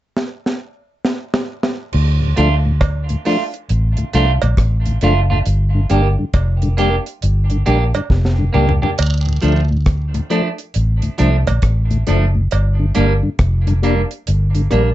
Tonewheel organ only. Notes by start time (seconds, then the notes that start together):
2.21 D2 A2
2.37 F3 A3 D4
2.66 D2 A2
3.10 D2 A2
3.26 F3 A3 D4
3.98 D2 A2
4.14 F3 A3 D4
4.42 D2 A2
4.86 D2 A2
5.03 F3 A3 D4
5.30 D2 A2
5.75 G2 D3
5.90 G3 A#3 D4
6.19 G2 D3
6.63 G2 D3
6.78 G3 A#3 D4
7.51 G2 D3
7.66 G3 A#3 D4
7.95 G2 D3
8.38 G2 D3
8.54 G3 A#3 D4
8.82 G2 D3
9.27 D2 A2
9.42 F3 A3 D4
9.71 D2 A2
10.14 D2 A2
10.30 F3 A3 D4
11.03 D2 A2
11.18 F3 A3 D4
11.47 D2 A2
11.91 D2 A2
12.07 F3 A3 D4
12.35 D2 A2
12.79 G2 D3
12.95 G3 A#3 D4
13.23 G2 D3
13.67 G2 D3
13.82 G3 A#3 D4
14.55 G2 D3
14.70 G3 A#3 D4